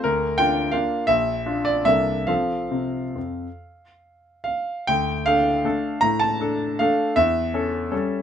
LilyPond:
\new Staff \with { instrumentName = "Grand piano" } { \time 3/4 \key f \major \tempo 4 = 156 << { bes'4 g''4 f''4 | e''4. d''8 e''4 | f''2.~ | f''2 f''4 |
\key d \minor g''4 f''2 | bes''8 a''4. f''4 | e''2. | } \\ { d,4 <d' f'>4 <bes d' f'>4 | bes,,4 <d' f'>4 <c, bes d' a'>4 | <f c' a'>4 c4 f,4 | r2. |
d,4 <d' a'>4 <a d' a'>4 | a,4 <d' a'>4 <a d' a'>4 | e,4 <cis' a'>4 <g cis' a'>4 | } >> }